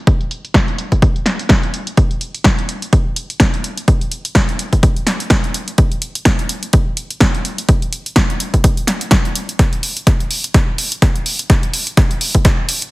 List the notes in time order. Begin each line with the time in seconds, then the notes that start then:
0.07 kick, closed hi-hat
0.21 closed hi-hat
0.31 closed hi-hat
0.45 closed hi-hat
0.54 kick, snare, closed hi-hat
0.68 closed hi-hat
0.78 closed hi-hat
0.92 kick, closed hi-hat
1.02 kick, closed hi-hat
1.16 closed hi-hat
1.26 snare, closed hi-hat
1.39 closed hi-hat
1.49 kick, snare, closed hi-hat
1.63 closed hi-hat
1.74 closed hi-hat
1.87 closed hi-hat
1.97 kick, closed hi-hat
2.11 closed hi-hat
2.21 closed hi-hat
2.35 closed hi-hat
2.44 kick, snare, closed hi-hat
2.59 closed hi-hat
2.69 closed hi-hat
2.82 closed hi-hat
2.93 kick, closed hi-hat
3.16 closed hi-hat
3.30 closed hi-hat
3.40 kick, snare, closed hi-hat
3.54 closed hi-hat
3.64 closed hi-hat
3.77 closed hi-hat
3.88 kick, closed hi-hat
4.01 closed hi-hat
4.12 closed hi-hat
4.25 closed hi-hat
4.35 kick, snare, closed hi-hat
4.49 closed hi-hat
4.59 closed hi-hat
4.73 kick, closed hi-hat
4.83 kick, closed hi-hat
4.96 closed hi-hat
5.07 snare, closed hi-hat
5.20 closed hi-hat
5.30 kick, snare, closed hi-hat
5.44 closed hi-hat
5.54 closed hi-hat
5.68 closed hi-hat
5.78 kick, closed hi-hat
5.92 closed hi-hat
6.02 closed hi-hat
6.15 closed hi-hat
6.25 kick, snare, closed hi-hat
6.39 closed hi-hat
6.49 closed hi-hat
6.63 closed hi-hat
6.73 kick, closed hi-hat
6.97 closed hi-hat
7.10 closed hi-hat
7.20 kick, snare, closed hi-hat
7.35 closed hi-hat
7.45 closed hi-hat
7.58 closed hi-hat
7.69 kick, closed hi-hat
7.82 closed hi-hat
7.93 closed hi-hat
8.06 closed hi-hat
8.16 kick, snare, closed hi-hat
8.30 closed hi-hat
8.40 closed hi-hat
8.54 kick, closed hi-hat
8.64 kick, closed hi-hat
8.77 closed hi-hat
8.87 snare, closed hi-hat
9.01 closed hi-hat
9.11 kick, snare, closed hi-hat
9.25 closed hi-hat
9.35 closed hi-hat
9.49 closed hi-hat
9.59 kick, snare, closed hi-hat
9.73 closed hi-hat
9.83 open hi-hat
9.97 closed hi-hat
10.07 kick, snare, closed hi-hat
10.20 closed hi-hat
10.31 open hi-hat
10.44 closed hi-hat
10.54 kick, snare, closed hi-hat
10.78 open hi-hat
10.92 closed hi-hat
11.02 kick, snare, closed hi-hat
11.16 closed hi-hat
11.26 open hi-hat
11.39 closed hi-hat
11.50 kick, snare, closed hi-hat
11.63 closed hi-hat
11.73 open hi-hat
11.87 closed hi-hat
11.97 kick, snare, closed hi-hat
12.11 closed hi-hat
12.21 open hi-hat
12.35 kick, closed hi-hat
12.45 kick, snare, closed hi-hat
12.69 open hi-hat
12.82 closed hi-hat